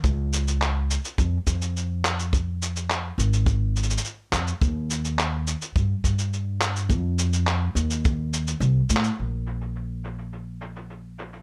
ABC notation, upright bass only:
X:1
M:4/4
L:1/8
Q:1/4=105
K:Dblyd
V:1 name="Upright bass" clef=bass
D,,3 z F,, F,,3- | F,,3 A,,,3 z F,, | E,,3 z G,, G,,3 | F,,3 E,,3 C,, =A,, |
B,,,8 |]